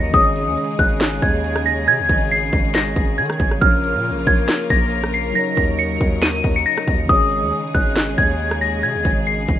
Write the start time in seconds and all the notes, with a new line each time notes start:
Already playing: D#2 C#3 F#3 D#4 A#4 C#5 A#6
0.10 G#1 D#3 G#3 C#4, closed hi-hat
0.14 G#4 C#5 D#6, kick
0.36 closed hi-hat
0.47 D#2
0.57 closed hi-hat
0.64 closed hi-hat
0.72 closed hi-hat
0.79 G#1 F#6, kick, open hi-hat
1.01 snare, closed hi-hat
1.22 D#2 G#6, kick, closed hi-hat
1.44 closed hi-hat
1.56 cross-stick
1.66 A#6, closed hi-hat
1.88 C3 G#6, closed hi-hat
1.99 D#2
2.09 G#1, kick, closed hi-hat
2.31 C7, closed hi-hat
2.38 closed hi-hat
2.46 closed hi-hat
2.53 G#1, kick, closed hi-hat
2.75 A#6, snare, closed hi-hat
2.96 G#1, kick, closed hi-hat
3.18 D#3 G#6, closed hi-hat
3.25 closed hi-hat
3.30 cross-stick, closed hi-hat
3.40 G#1, kick, closed hi-hat
3.51 cross-stick
3.58 A#1 F3 A#3 C#4 F4 A#4 F6, kick, closed hi-hat
3.63 A#4 C#5
3.84 closed hi-hat
3.95 A#2
4.05 closed hi-hat
4.11 A#1, closed hi-hat
4.20 closed hi-hat
4.27 A#1 G#6, kick, open hi-hat
4.49 snare, closed hi-hat
4.70 A#1 A#6, kick, closed hi-hat
4.92 closed hi-hat
5.04 cross-stick
5.14 C7, closed hi-hat
5.31 F#3 D#4 A#6, closed hi-hat
5.36 A#4 C#5
5.57 D#2, kick, closed hi-hat
5.79 C#7, closed hi-hat
6.00 D#2, kick, open hi-hat
6.22 D#7, snare, closed hi-hat
6.44 D#2, kick, closed hi-hat
6.51 closed hi-hat
6.56 C#7, closed hi-hat
6.66 A#6, closed hi-hat
6.72 closed hi-hat
6.77 cross-stick, closed hi-hat
6.83 closed hi-hat
6.88 D#2, kick, closed hi-hat
7.05 D#3 C#4, closed hi-hat
7.09 G#1 C#3 G#3 G#4 C#5 D#6, kick
7.32 closed hi-hat
7.43 D#2
7.53 closed hi-hat
7.60 closed hi-hat
7.67 closed hi-hat
7.74 G#1 F#6, kick, open hi-hat
7.96 snare, closed hi-hat
8.18 D#2 G#6, kick, closed hi-hat
8.40 closed hi-hat
8.51 cross-stick
8.61 A#6, closed hi-hat
8.83 C3 G#6, closed hi-hat
8.95 D#2
9.05 G#1, kick, closed hi-hat
9.27 C7, closed hi-hat
9.34 closed hi-hat
9.41 closed hi-hat
9.48 G#1, kick, closed hi-hat